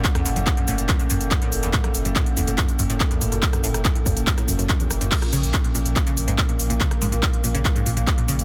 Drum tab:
CC |----------------|----------------|----------------|x---------------|
HH |xxoxxxoxxxoxxxox|xxoxxxoxxxoxxxox|xxoxxxoxxxoxxxox|xxoxxxoxxxoxxxox|
SH |x-xxx-xxxxxxx-xx|x-xxx-xxxxxxx-xx|xxxxx-xxxxxxxxxx|x-xxx-xxxxxxx-xx|
CP |x---x---x---x---|x---x---x---x---|x---x---x---x---|x---x---x---x---|
SD |-r--------------|-r--------------|-r-r-----r----r-|-r--------------|
BD |o---o---o---o---|o---o---o---o---|o---o-o-o---o---|o---o---o---o---|

CC |----------------|
HH |xxoxxxoxxxoxxxox|
SH |x-xxx-xxxxxxx-xx|
CP |x---x---x---x---|
SD |-r--------------|
BD |o---o---o---o---|